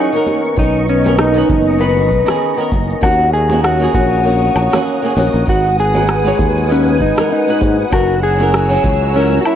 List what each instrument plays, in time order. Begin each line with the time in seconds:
Already playing: clean electric guitar D#4, nylon-string guitar G#4, string machine A#4 C#5 F#5 C#6
0.12 nylon-string guitar D#3 B3 C#4 A#4, cabasa
0.26 string machine B3 D#5 A#5, high conga, cabasa
0.45 cabasa
0.56 fretless electric bass B1, nylon-string guitar D#3 B3 C#4 A#4, clean electric guitar D#4, kick, cabasa
0.75 cabasa
0.89 clean electric guitar C#4, cabasa
1.04 nylon-string guitar D#3 B3 C#4 A#4, high conga, cabasa
1.19 clean electric guitar D#4, cross-stick, cabasa
1.34 nylon-string guitar D#3 B3 C#4 B4, cabasa
1.49 fretless electric bass F#1, kick, low conga, cabasa
1.67 cabasa
1.78 nylon-string guitar D#3 B3 C#4 B4, clean electric guitar B4, cabasa
1.97 high conga, cabasa
2.11 fretless electric bass B1, kick, cabasa
2.26 nylon-string guitar D#3 B3 C#4 G#4, cross-stick, low conga, cabasa
2.42 cabasa
2.57 nylon-string guitar D#3 B3 C#4 A#4, cabasa
2.72 fretless electric bass F#1, kick, high conga, cabasa
2.90 cabasa
3.01 fretless electric bass D#2, nylon-string guitar D#3 A#3 C#4 F#4, clean electric guitar F#4, string machine C#5 F#5 D#6, kick, cabasa, low woodblock
3.21 cabasa
3.33 clean electric guitar G#4, cabasa
3.49 nylon-string guitar D#3 A#3 C#4 F#4, high conga, cabasa
3.64 clean electric guitar F#4, cross-stick, cabasa
3.80 nylon-string guitar D#3 A#3 C#4 G#4, cabasa
3.94 fretless electric bass A#1, clean electric guitar F#4, kick, low conga, cabasa
4.13 cabasa
4.23 nylon-string guitar D#3 A#3 C#4 F#4, cabasa
4.43 high conga, cabasa
4.56 fretless electric bass A#1, cabasa, low woodblock
4.71 nylon-string guitar D#3 A#3 C#4 F#4, cross-stick, low conga, cabasa
4.87 cabasa
5.02 nylon-string guitar D#3 A#3 C#4 G#4, cabasa
5.15 fretless electric bass A#1, nylon-string guitar D#3 A#3 C#4 F#4, high conga, cabasa
5.34 fretless electric bass A#1, cabasa
5.46 fretless electric bass G#1, nylon-string guitar G#3 D#4 F#4 B4, clean electric guitar F#4, string machine B4 G#5, kick, cabasa
5.65 cabasa
5.79 clean electric guitar G#4, cabasa
5.93 nylon-string guitar G#3 D#4 F#4 B4, high conga, cabasa
6.09 cross-stick, cabasa
6.24 nylon-string guitar G#3 D#4 F#4 C#5, cabasa
6.39 fretless electric bass D#2, kick, low conga, cabasa
6.57 cabasa
6.68 nylon-string guitar G#3 D#4 F#4 B4, clean electric guitar C#4, cabasa
6.87 high conga, cabasa
7.00 fretless electric bass G#1, clean electric guitar D#4, kick, cabasa
7.16 nylon-string guitar G#3 D#4 F#4 A#4, cross-stick, low conga, cabasa
7.31 clean electric guitar D#4, cabasa
7.47 nylon-string guitar G#3 D#4 F#4 B4, cabasa
7.61 fretless electric bass G#2, kick, high conga, cabasa
7.80 cabasa
7.90 fretless electric bass F#1, nylon-string guitar F#3 C#4 E4 A#4, clean electric guitar F#4, string machine C#5 A#5 E6, kick, cabasa, low woodblock
8.10 cabasa
8.23 clean electric guitar G#4, cabasa
8.38 nylon-string guitar F#3 C#4 E4 A#4, high conga, cabasa
8.54 cross-stick, cabasa
8.69 nylon-string guitar F#3 C#4 E4 C#5, cabasa
8.84 fretless electric bass C#2, kick, low conga, cabasa
9.02 cabasa
9.13 nylon-string guitar F#3 C#4 E4 A#4, clean electric guitar C#4, cabasa
9.32 high conga, cabasa
9.41 clean electric guitar F#4
9.45 clean electric guitar E4, cabasa, low woodblock